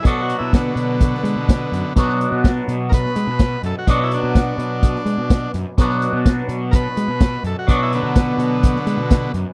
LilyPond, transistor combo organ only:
\new Staff \with { instrumentName = "Transistor combo organ" } { \time 4/4 \key b \minor \tempo 4 = 126 \tuplet 3/2 { <gis' a'>8 fis'8 e'8 } <d b>2. | r2 <ais' b'>4. a'16 fis'16 | d'16 e'16 d'2. r8 | r2 <ais' b'>4. a'16 fis'16 |
d'16 e'16 <d b>2. r8 | }